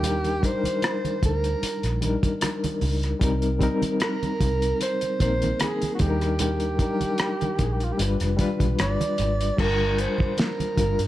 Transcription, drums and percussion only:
0.03 closed hi-hat, muted conga, low conga
0.24 closed hi-hat, muted conga
0.43 kick, closed hi-hat
0.64 closed hi-hat, high conga
0.82 cross-stick, closed hi-hat, muted conga
1.05 closed hi-hat, high conga
1.22 kick, closed hi-hat, low conga
1.44 closed hi-hat
1.62 closed hi-hat, muted conga
1.83 cross-stick, closed hi-hat
2.02 closed hi-hat, high conga
2.23 kick, closed hi-hat, high conga
2.41 cross-stick, closed hi-hat, muted conga, high conga
2.64 closed hi-hat, muted conga, high conga
2.81 open hi-hat, low conga
3.03 cross-stick, closed hi-hat
3.21 kick, closed hi-hat, muted conga, low conga
3.42 closed hi-hat
3.61 kick, closed hi-hat
3.82 closed hi-hat, high conga
4.00 cross-stick, closed hi-hat, muted conga
4.23 closed hi-hat, muted conga, high conga
4.41 kick, closed hi-hat, low conga
4.62 closed hi-hat
4.80 closed hi-hat, muted conga
5.01 closed hi-hat, muted conga
5.20 kick, closed hi-hat, high conga
5.42 closed hi-hat, high conga
5.60 cross-stick, closed hi-hat, muted conga, high conga
5.82 closed hi-hat, high conga
5.99 kick, closed hi-hat, low conga
6.21 cross-stick, closed hi-hat
6.39 closed hi-hat, muted conga, low conga
6.60 closed hi-hat
6.79 kick, closed hi-hat
7.01 closed hi-hat, high conga
7.18 cross-stick, closed hi-hat, muted conga
7.41 closed hi-hat, muted conga, high conga
7.59 kick, closed hi-hat, low conga
7.80 closed hi-hat
7.99 closed hi-hat, muted conga
8.20 cross-stick, closed hi-hat, muted conga
8.39 kick, closed hi-hat, high conga
8.60 kick, closed hi-hat, high conga
8.79 cross-stick, closed hi-hat, muted conga, high conga
9.01 closed hi-hat, muted conga, high conga
9.18 closed hi-hat, low conga
9.41 closed hi-hat
9.58 kick, crash, muted conga
9.79 muted conga
9.98 closed hi-hat
10.18 kick, high conga
10.37 snare, closed hi-hat, muted conga
10.60 closed hi-hat, muted conga, high conga
10.78 kick, closed hi-hat, low conga
10.99 closed hi-hat

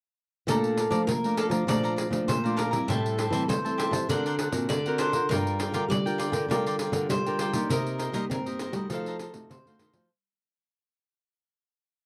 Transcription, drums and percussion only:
0.49 pandeiro
0.64 pandeiro
0.78 pandeiro
0.92 pandeiro
1.09 pandeiro
1.24 pandeiro
1.38 pandeiro
1.51 pandeiro
1.69 pandeiro
1.85 pandeiro
1.98 pandeiro
2.13 pandeiro
2.29 pandeiro
2.46 pandeiro
2.59 pandeiro
2.73 pandeiro
2.90 pandeiro
3.06 pandeiro
3.19 pandeiro
3.33 pandeiro
3.50 pandeiro
3.66 pandeiro
3.80 pandeiro
3.93 pandeiro
4.10 pandeiro
4.26 pandeiro
4.39 pandeiro
4.52 pandeiro
4.70 pandeiro
4.86 pandeiro
4.99 pandeiro
5.13 pandeiro
5.31 pandeiro
5.47 pandeiro
5.60 pandeiro
5.74 pandeiro
5.91 pandeiro
6.07 pandeiro
6.20 pandeiro
6.33 pandeiro
6.51 pandeiro
6.67 pandeiro
6.79 pandeiro
6.93 pandeiro
7.10 pandeiro
7.26 pandeiro
7.39 pandeiro
7.53 pandeiro
7.70 pandeiro
7.87 pandeiro
7.99 pandeiro
8.14 pandeiro
8.31 pandeiro
8.46 pandeiro
8.59 pandeiro
8.73 pandeiro
8.90 pandeiro
9.06 pandeiro
9.19 pandeiro
9.34 pandeiro
9.51 pandeiro
9.67 pandeiro
9.79 pandeiro
9.94 pandeiro

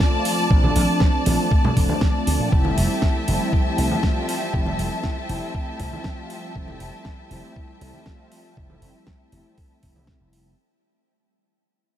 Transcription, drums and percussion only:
0.00 kick
0.25 open hi-hat
0.51 kick
0.64 high conga
0.76 open hi-hat
1.00 kick, snare
1.26 open hi-hat, high conga
1.51 kick
1.65 low conga
1.77 kick, open hi-hat
1.89 high conga
2.01 kick, snare
2.27 open hi-hat
2.52 kick
2.65 high conga
2.78 open hi-hat
3.02 kick, snare
3.28 open hi-hat, high conga
3.53 kick
3.78 open hi-hat
3.92 high conga
4.03 kick, snare
4.29 open hi-hat
4.54 kick
4.66 high conga
4.79 open hi-hat
5.04 kick, snare
5.29 open hi-hat, high conga
5.55 kick
5.80 kick, open hi-hat
5.93 high conga
6.04 kick, snare
6.30 open hi-hat
6.56 kick
6.68 high conga
6.80 open hi-hat
7.05 kick, snare
7.31 open hi-hat, high conga
7.56 kick
7.81 open hi-hat
7.94 high conga
8.06 kick, snare
8.32 open hi-hat
8.57 kick
8.70 high conga
8.82 open hi-hat
9.07 kick, snare
9.32 open hi-hat, high conga
9.58 kick, open hi-hat
9.83 kick, open hi-hat
9.96 high conga
10.07 kick, snare
10.33 open hi-hat

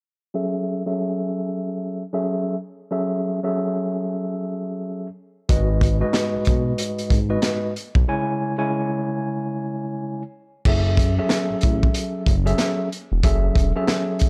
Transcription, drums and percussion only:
5.49 kick, closed hi-hat
5.81 kick, closed hi-hat
6.13 snare, closed hi-hat
6.45 kick, closed hi-hat
6.78 closed hi-hat
6.98 closed hi-hat
7.10 kick, closed hi-hat
7.42 snare, closed hi-hat
7.76 closed hi-hat
7.95 kick
10.65 kick, crash
10.97 kick, closed hi-hat
11.29 snare, closed hi-hat
11.61 kick, closed hi-hat
11.83 kick
11.94 closed hi-hat
12.26 kick, closed hi-hat
12.47 closed hi-hat
12.58 snare, closed hi-hat
12.92 closed hi-hat
13.23 kick, closed hi-hat
13.55 kick, closed hi-hat
13.87 snare, closed hi-hat
14.19 kick, closed hi-hat

